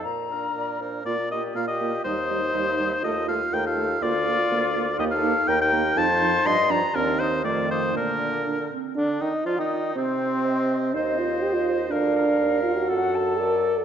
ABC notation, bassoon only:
X:1
M:2/4
L:1/16
Q:1/4=122
K:Bb
V:1 name="Bassoon" clef=bass
B,,4 B,,4 | B,,4 B,,4 | E,,4 E,,4 | E,,4 E,,4 |
D,,4 D,,4 | E,,4 E,,4 | F,,4 G,,4 | E,,4 F,,4 |
B,,6 z2 | D,2 E,2 F, E,3 | C,8 | E,,8 |
D,,4 E,,4 | [K:Dphr] ^F,,8 |]